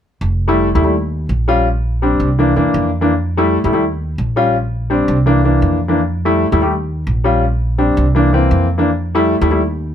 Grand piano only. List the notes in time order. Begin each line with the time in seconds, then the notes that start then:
0.48 G3 A3 E4
0.75 G3 A3 E4
0.84 G3 A3 E4
1.48 G3 C#4 F4
2.02 G3 C4 D4
2.39 E3 A#3 D4
2.56 E3 A#3 D4
3.01 E3 A#3 D4
3.37 G3 A3 E4
3.65 G3 A3 E4
3.73 G3 A3 E4
4.36 G3 C#4 F4
4.90 G3 C4 D4
5.26 E3 A#3 D4
5.44 E3 A#3 D4
5.88 E3 A#3 D4
6.25 G3 A3 E4
6.52 G3 A3 E4
6.62 G3 A3 G4
7.24 G3 C#4 F4
7.78 G3 C4 D4
8.15 E3 A#3 D4
8.33 E3 A#3 C4
8.78 E3 A#3 D4
9.15 G3 A3 E4
9.42 G3 A3 E4
9.51 G3 A3 E4